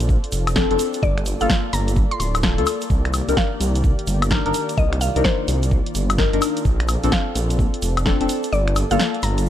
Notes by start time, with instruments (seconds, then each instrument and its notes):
Already playing: detuned saw bass A#1, synth stab C4 D4 A4, analog synth pad F4 A4 C5 D5
0.00 closed hi-hat, shaker
0.09 kick, shaker
0.24 closed hi-hat
0.32 detuned saw bass F1, open hi-hat, shaker
0.47 finger snap, closed hi-hat, high woodblock, shaker
0.56 synth stab C4 D4 A4, kick, snare, shaker
0.71 detuned saw bass F1, synth stab C4 D4 A4, closed hi-hat
0.79 open hi-hat, shaker
0.93 closed hi-hat, shaker
1.03 detuned saw bass G1, analog synth pad A#3, synth pluck D5, kick, shaker
1.18 finger snap, closed hi-hat
1.26 open hi-hat, shaker
1.40 detuned saw bass G1, synth stab A#3 F4 A4, synth pluck F5, closed hi-hat, shaker
1.50 kick, snare, shaker
1.73 detuned saw bass G1, synth pluck A#5, open hi-hat, shaker
1.88 closed hi-hat, shaker
1.96 kick, shaker
2.11 synth pluck C6, closed hi-hat
2.20 detuned saw bass D1, synth pluck C6, open hi-hat, shaker
2.35 finger snap, closed hi-hat, high woodblock, shaker
2.43 synth stab A#3 F4 A4, kick, snare, shaker
2.58 detuned saw bass D2, synth stab A#3 F4 A4, closed hi-hat
2.66 open hi-hat, high woodblock, shaker
2.81 closed hi-hat, shaker
2.90 detuned saw bass C2, analog synth pad D#3 G4, kick, shaker
3.05 finger snap, closed hi-hat
3.14 open hi-hat, high woodblock, shaker
3.29 detuned saw bass C2, synth stab D4 D#4 A#4, closed hi-hat, shaker
3.37 synth pluck F5, kick, snare, shaker
3.60 detuned saw bass C2, open hi-hat, shaker
3.75 closed hi-hat, shaker
3.84 kick, shaker
3.99 closed hi-hat
4.07 detuned saw bass G1, open hi-hat, shaker
4.22 finger snap, closed hi-hat, high woodblock, shaker
4.30 synth stab D4 D#4 A#4, kick, snare, shaker
4.46 detuned saw bass G1, synth stab D4 D#4 A#4, closed hi-hat
4.54 open hi-hat, shaker
4.69 closed hi-hat, shaker
4.78 detuned saw bass C2, analog synth pad F4, synth pluck D#5, kick, shaker
4.93 finger snap, closed hi-hat
5.01 synth pluck F5, open hi-hat, shaker
5.16 detuned saw bass C2, synth stab D4 D#4 A#4, closed hi-hat, shaker
5.24 synth pluck C5, kick, snare, shaker
5.48 detuned saw bass C2, open hi-hat, shaker
5.63 closed hi-hat, shaker
5.71 kick, shaker
5.86 closed hi-hat
5.95 detuned saw bass G1, open hi-hat, shaker
6.10 finger snap, closed hi-hat, high woodblock, shaker
6.18 synth stab D4 D#4 A#4, kick, snare, shaker
6.33 detuned saw bass G1, synth stab D4 D#4 A#4, closed hi-hat
6.42 open hi-hat, high woodblock, shaker
6.57 closed hi-hat, shaker
6.65 detuned saw bass A#1, analog synth pad C4 A4, kick, shaker
6.80 finger snap, closed hi-hat
6.88 open hi-hat, high woodblock, shaker
7.03 detuned saw bass A#1, synth stab C4 D4 A4, closed hi-hat, shaker
7.12 synth pluck F5, kick, snare, shaker
7.35 detuned saw bass A#1, open hi-hat, shaker
7.50 closed hi-hat, shaker
7.59 kick, shaker
7.74 closed hi-hat
7.82 detuned saw bass F1, open hi-hat, shaker
7.97 finger snap, closed hi-hat, high woodblock, shaker
8.06 synth stab C4 D4 A4, kick, snare, shaker
8.21 detuned saw bass F1, synth stab C4 D4 A4, closed hi-hat
8.29 open hi-hat, shaker
8.43 closed hi-hat, shaker
8.53 detuned saw bass G1, analog synth pad A#3 F4 D5, synth pluck D5, shaker
8.68 finger snap, closed hi-hat
8.76 open hi-hat, high woodblock, shaker
8.91 detuned saw bass G1, synth stab A#3 F4 A4, synth pluck F5, closed hi-hat, shaker
8.99 snare, shaker
9.14 closed hi-hat
9.23 detuned saw bass G1, synth pluck A#5, open hi-hat, shaker
9.38 closed hi-hat, shaker